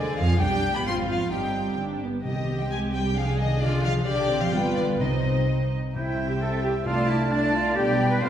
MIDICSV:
0, 0, Header, 1, 11, 480
1, 0, Start_track
1, 0, Key_signature, -3, "minor"
1, 0, Tempo, 454890
1, 440, Time_signature, 2, 2, 24, 8
1, 4286, Tempo, 472813
1, 6206, Tempo, 454201
1, 8678, End_track
2, 0, Start_track
2, 0, Title_t, "Flute"
2, 0, Program_c, 0, 73
2, 6204, Note_on_c, 0, 76, 44
2, 7167, Note_on_c, 0, 81, 56
2, 7183, Note_off_c, 0, 76, 0
2, 8117, Note_off_c, 0, 81, 0
2, 8123, Note_on_c, 0, 79, 59
2, 8598, Note_on_c, 0, 77, 56
2, 8614, Note_off_c, 0, 79, 0
2, 8678, Note_off_c, 0, 77, 0
2, 8678, End_track
3, 0, Start_track
3, 0, Title_t, "Oboe"
3, 0, Program_c, 1, 68
3, 6205, Note_on_c, 1, 79, 55
3, 6699, Note_on_c, 1, 76, 48
3, 6715, Note_off_c, 1, 79, 0
3, 7171, Note_on_c, 1, 77, 60
3, 7187, Note_off_c, 1, 76, 0
3, 7643, Note_on_c, 1, 81, 72
3, 7659, Note_off_c, 1, 77, 0
3, 8123, Note_off_c, 1, 81, 0
3, 8133, Note_on_c, 1, 79, 70
3, 8618, Note_on_c, 1, 77, 60
3, 8634, Note_off_c, 1, 79, 0
3, 8678, Note_off_c, 1, 77, 0
3, 8678, End_track
4, 0, Start_track
4, 0, Title_t, "Violin section"
4, 0, Program_c, 2, 48
4, 0, Note_on_c, 2, 74, 74
4, 193, Note_on_c, 2, 77, 94
4, 194, Note_off_c, 2, 74, 0
4, 430, Note_off_c, 2, 77, 0
4, 439, Note_on_c, 2, 79, 95
4, 789, Note_off_c, 2, 79, 0
4, 810, Note_on_c, 2, 83, 78
4, 920, Note_on_c, 2, 84, 90
4, 922, Note_off_c, 2, 83, 0
4, 1005, Note_off_c, 2, 84, 0
4, 1155, Note_on_c, 2, 77, 78
4, 1395, Note_off_c, 2, 77, 0
4, 1395, Note_on_c, 2, 79, 65
4, 1879, Note_off_c, 2, 79, 0
4, 2381, Note_on_c, 2, 75, 65
4, 2717, Note_off_c, 2, 75, 0
4, 2754, Note_on_c, 2, 79, 68
4, 2860, Note_on_c, 2, 80, 71
4, 2868, Note_off_c, 2, 79, 0
4, 2945, Note_off_c, 2, 80, 0
4, 3106, Note_on_c, 2, 79, 79
4, 3334, Note_on_c, 2, 77, 84
4, 3336, Note_off_c, 2, 79, 0
4, 3571, Note_off_c, 2, 77, 0
4, 3582, Note_on_c, 2, 75, 80
4, 3809, Note_off_c, 2, 75, 0
4, 3815, Note_on_c, 2, 74, 91
4, 4050, Note_off_c, 2, 74, 0
4, 4056, Note_on_c, 2, 77, 104
4, 4141, Note_off_c, 2, 77, 0
4, 4287, Note_on_c, 2, 74, 98
4, 4631, Note_off_c, 2, 74, 0
4, 4643, Note_on_c, 2, 77, 86
4, 4759, Note_off_c, 2, 77, 0
4, 4770, Note_on_c, 2, 79, 80
4, 4996, Note_on_c, 2, 74, 72
4, 5003, Note_off_c, 2, 79, 0
4, 5078, Note_off_c, 2, 74, 0
4, 5240, Note_on_c, 2, 72, 59
4, 5715, Note_off_c, 2, 72, 0
4, 6209, Note_on_c, 2, 79, 49
4, 7130, Note_off_c, 2, 79, 0
4, 7172, Note_on_c, 2, 81, 60
4, 7643, Note_off_c, 2, 81, 0
4, 7656, Note_on_c, 2, 81, 60
4, 8120, Note_off_c, 2, 81, 0
4, 8125, Note_on_c, 2, 79, 63
4, 8572, Note_off_c, 2, 79, 0
4, 8597, Note_on_c, 2, 77, 54
4, 8678, Note_off_c, 2, 77, 0
4, 8678, End_track
5, 0, Start_track
5, 0, Title_t, "Clarinet"
5, 0, Program_c, 3, 71
5, 6221, Note_on_c, 3, 72, 43
5, 7136, Note_off_c, 3, 72, 0
5, 7168, Note_on_c, 3, 74, 58
5, 8106, Note_off_c, 3, 74, 0
5, 8127, Note_on_c, 3, 74, 67
5, 8607, Note_on_c, 3, 72, 56
5, 8623, Note_off_c, 3, 74, 0
5, 8678, Note_off_c, 3, 72, 0
5, 8678, End_track
6, 0, Start_track
6, 0, Title_t, "Violin section"
6, 0, Program_c, 4, 48
6, 0, Note_on_c, 4, 68, 67
6, 431, Note_off_c, 4, 68, 0
6, 432, Note_on_c, 4, 67, 63
6, 911, Note_off_c, 4, 67, 0
6, 917, Note_on_c, 4, 65, 66
6, 1391, Note_off_c, 4, 65, 0
6, 1401, Note_on_c, 4, 67, 49
6, 2123, Note_off_c, 4, 67, 0
6, 2389, Note_on_c, 4, 67, 52
6, 3300, Note_off_c, 4, 67, 0
6, 3329, Note_on_c, 4, 68, 62
6, 3804, Note_off_c, 4, 68, 0
6, 3820, Note_on_c, 4, 65, 68
6, 4282, Note_off_c, 4, 65, 0
6, 4291, Note_on_c, 4, 67, 65
6, 4750, Note_off_c, 4, 67, 0
6, 4770, Note_on_c, 4, 71, 69
6, 5245, Note_off_c, 4, 71, 0
6, 5246, Note_on_c, 4, 75, 54
6, 5971, Note_off_c, 4, 75, 0
6, 6203, Note_on_c, 4, 76, 41
6, 7127, Note_off_c, 4, 76, 0
6, 7167, Note_on_c, 4, 74, 52
6, 7631, Note_off_c, 4, 74, 0
6, 7643, Note_on_c, 4, 74, 64
6, 8114, Note_off_c, 4, 74, 0
6, 8126, Note_on_c, 4, 74, 60
6, 8572, Note_off_c, 4, 74, 0
6, 8602, Note_on_c, 4, 72, 56
6, 8678, Note_off_c, 4, 72, 0
6, 8678, End_track
7, 0, Start_track
7, 0, Title_t, "French horn section"
7, 0, Program_c, 5, 60
7, 6212, Note_on_c, 5, 64, 43
7, 6214, Note_on_c, 5, 55, 43
7, 7132, Note_off_c, 5, 64, 0
7, 7133, Note_off_c, 5, 55, 0
7, 7185, Note_on_c, 5, 57, 55
7, 7187, Note_on_c, 5, 62, 54
7, 8102, Note_off_c, 5, 62, 0
7, 8114, Note_on_c, 5, 62, 62
7, 8127, Note_on_c, 5, 55, 60
7, 8134, Note_off_c, 5, 57, 0
7, 8343, Note_off_c, 5, 62, 0
7, 8367, Note_on_c, 5, 64, 55
7, 8573, Note_off_c, 5, 55, 0
7, 8598, Note_on_c, 5, 57, 55
7, 8598, Note_on_c, 5, 65, 61
7, 8607, Note_off_c, 5, 64, 0
7, 8678, Note_off_c, 5, 57, 0
7, 8678, Note_off_c, 5, 65, 0
7, 8678, End_track
8, 0, Start_track
8, 0, Title_t, "Viola section"
8, 0, Program_c, 6, 48
8, 0, Note_on_c, 6, 50, 70
8, 203, Note_off_c, 6, 50, 0
8, 205, Note_on_c, 6, 53, 81
8, 437, Note_on_c, 6, 67, 66
8, 441, Note_off_c, 6, 53, 0
8, 443, Note_on_c, 6, 62, 63
8, 880, Note_off_c, 6, 67, 0
8, 884, Note_off_c, 6, 62, 0
8, 915, Note_on_c, 6, 60, 58
8, 915, Note_on_c, 6, 65, 59
8, 1386, Note_off_c, 6, 60, 0
8, 1399, Note_on_c, 6, 60, 48
8, 1400, Note_off_c, 6, 65, 0
8, 1404, Note_on_c, 6, 63, 49
8, 1881, Note_off_c, 6, 60, 0
8, 1894, Note_off_c, 6, 63, 0
8, 1894, Note_on_c, 6, 62, 55
8, 2121, Note_off_c, 6, 62, 0
8, 2138, Note_on_c, 6, 59, 51
8, 2382, Note_off_c, 6, 59, 0
8, 2384, Note_on_c, 6, 60, 47
8, 2384, Note_on_c, 6, 67, 46
8, 3297, Note_off_c, 6, 60, 0
8, 3297, Note_off_c, 6, 67, 0
8, 3337, Note_on_c, 6, 62, 55
8, 3343, Note_on_c, 6, 68, 56
8, 4244, Note_off_c, 6, 62, 0
8, 4247, Note_off_c, 6, 68, 0
8, 4290, Note_on_c, 6, 62, 67
8, 4292, Note_on_c, 6, 67, 63
8, 4506, Note_off_c, 6, 62, 0
8, 4524, Note_on_c, 6, 60, 59
8, 4727, Note_off_c, 6, 67, 0
8, 4759, Note_off_c, 6, 60, 0
8, 4760, Note_on_c, 6, 65, 62
8, 4762, Note_on_c, 6, 59, 61
8, 5231, Note_on_c, 6, 63, 49
8, 5233, Note_on_c, 6, 60, 49
8, 5240, Note_off_c, 6, 65, 0
8, 5241, Note_off_c, 6, 59, 0
8, 5979, Note_off_c, 6, 63, 0
8, 5995, Note_off_c, 6, 60, 0
8, 6206, Note_on_c, 6, 60, 47
8, 7129, Note_off_c, 6, 60, 0
8, 7165, Note_on_c, 6, 57, 55
8, 7628, Note_off_c, 6, 57, 0
8, 7641, Note_on_c, 6, 57, 62
8, 8113, Note_off_c, 6, 57, 0
8, 8124, Note_on_c, 6, 59, 62
8, 8571, Note_off_c, 6, 59, 0
8, 8597, Note_on_c, 6, 60, 56
8, 8678, Note_off_c, 6, 60, 0
8, 8678, End_track
9, 0, Start_track
9, 0, Title_t, "Cello section"
9, 0, Program_c, 7, 48
9, 0, Note_on_c, 7, 50, 61
9, 190, Note_on_c, 7, 53, 78
9, 199, Note_off_c, 7, 50, 0
9, 428, Note_off_c, 7, 53, 0
9, 433, Note_on_c, 7, 55, 80
9, 785, Note_off_c, 7, 55, 0
9, 792, Note_on_c, 7, 59, 66
9, 911, Note_off_c, 7, 59, 0
9, 917, Note_on_c, 7, 60, 81
9, 1153, Note_on_c, 7, 53, 67
9, 1156, Note_off_c, 7, 60, 0
9, 1394, Note_off_c, 7, 53, 0
9, 1398, Note_on_c, 7, 55, 52
9, 1881, Note_off_c, 7, 55, 0
9, 2381, Note_on_c, 7, 51, 55
9, 2717, Note_off_c, 7, 51, 0
9, 2745, Note_on_c, 7, 55, 51
9, 2861, Note_on_c, 7, 56, 64
9, 2863, Note_off_c, 7, 55, 0
9, 3095, Note_off_c, 7, 56, 0
9, 3106, Note_on_c, 7, 55, 69
9, 3336, Note_off_c, 7, 55, 0
9, 3336, Note_on_c, 7, 53, 72
9, 3571, Note_on_c, 7, 51, 72
9, 3572, Note_off_c, 7, 53, 0
9, 3655, Note_off_c, 7, 51, 0
9, 3811, Note_on_c, 7, 50, 73
9, 4043, Note_off_c, 7, 50, 0
9, 4054, Note_on_c, 7, 53, 82
9, 4290, Note_off_c, 7, 53, 0
9, 4295, Note_on_c, 7, 50, 77
9, 4636, Note_off_c, 7, 50, 0
9, 4642, Note_on_c, 7, 53, 71
9, 4759, Note_off_c, 7, 53, 0
9, 4763, Note_on_c, 7, 55, 67
9, 4999, Note_off_c, 7, 55, 0
9, 5007, Note_on_c, 7, 50, 66
9, 5244, Note_off_c, 7, 50, 0
9, 5249, Note_on_c, 7, 48, 56
9, 5729, Note_off_c, 7, 48, 0
9, 6209, Note_on_c, 7, 64, 59
9, 6545, Note_off_c, 7, 64, 0
9, 6574, Note_on_c, 7, 67, 53
9, 6692, Note_off_c, 7, 67, 0
9, 6692, Note_on_c, 7, 69, 66
9, 6925, Note_on_c, 7, 67, 71
9, 6931, Note_off_c, 7, 69, 0
9, 7009, Note_off_c, 7, 67, 0
9, 7166, Note_on_c, 7, 65, 85
9, 7401, Note_on_c, 7, 64, 79
9, 7404, Note_off_c, 7, 65, 0
9, 7646, Note_off_c, 7, 64, 0
9, 7646, Note_on_c, 7, 62, 86
9, 7882, Note_off_c, 7, 62, 0
9, 7890, Note_on_c, 7, 65, 83
9, 8123, Note_off_c, 7, 65, 0
9, 8125, Note_on_c, 7, 67, 91
9, 8485, Note_off_c, 7, 67, 0
9, 8487, Note_on_c, 7, 71, 68
9, 8597, Note_on_c, 7, 72, 81
9, 8604, Note_off_c, 7, 71, 0
9, 8678, Note_off_c, 7, 72, 0
9, 8678, End_track
10, 0, Start_track
10, 0, Title_t, "Timpani"
10, 0, Program_c, 8, 47
10, 0, Note_on_c, 8, 48, 68
10, 160, Note_off_c, 8, 48, 0
10, 2372, Note_on_c, 8, 48, 62
10, 3054, Note_off_c, 8, 48, 0
10, 5237, Note_on_c, 8, 48, 69
10, 5926, Note_off_c, 8, 48, 0
10, 6211, Note_on_c, 8, 48, 59
10, 6890, Note_off_c, 8, 48, 0
10, 7168, Note_on_c, 8, 48, 59
10, 7845, Note_off_c, 8, 48, 0
10, 8678, End_track
11, 0, Start_track
11, 0, Title_t, "Double bass section"
11, 0, Program_c, 10, 48
11, 194, Note_on_c, 10, 41, 76
11, 425, Note_on_c, 10, 35, 64
11, 430, Note_off_c, 10, 41, 0
11, 874, Note_off_c, 10, 35, 0
11, 910, Note_on_c, 10, 32, 62
11, 1392, Note_on_c, 10, 31, 47
11, 1397, Note_off_c, 10, 32, 0
11, 1874, Note_off_c, 10, 31, 0
11, 1887, Note_on_c, 10, 31, 45
11, 2160, Note_off_c, 10, 31, 0
11, 2383, Note_on_c, 10, 36, 52
11, 4245, Note_off_c, 10, 36, 0
11, 4289, Note_on_c, 10, 35, 66
11, 4725, Note_off_c, 10, 35, 0
11, 4760, Note_on_c, 10, 31, 60
11, 5240, Note_off_c, 10, 31, 0
11, 5242, Note_on_c, 10, 36, 51
11, 6000, Note_off_c, 10, 36, 0
11, 6210, Note_on_c, 10, 36, 45
11, 8087, Note_off_c, 10, 36, 0
11, 8125, Note_on_c, 10, 35, 63
11, 8572, Note_off_c, 10, 35, 0
11, 8603, Note_on_c, 10, 33, 54
11, 8678, Note_off_c, 10, 33, 0
11, 8678, End_track
0, 0, End_of_file